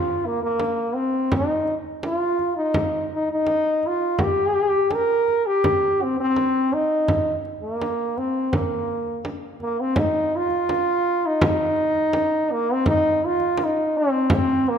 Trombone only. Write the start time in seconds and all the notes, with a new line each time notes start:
Already playing: F4
0.25 A#3
0.43 A#3
0.95 C4
1.33 D#4
2.05 F4
2.57 D#4
3.14 D#4
3.32 D#4
3.87 F4
4.22 G4
4.94 A#4
5.46 G4
6.02 C4
6.20 C4
6.73 D#4
7.63 A#3
8.18 C4
8.53 A#3
9.62 A#3
9.80 C4
9.98 D#4
10.36 F4
11.26 D#4
12.52 A#3
12.73 C4
12.88 D#4
13.25 F4
13.64 D#4
13.97 C4
14.33 C4
14.68 A#3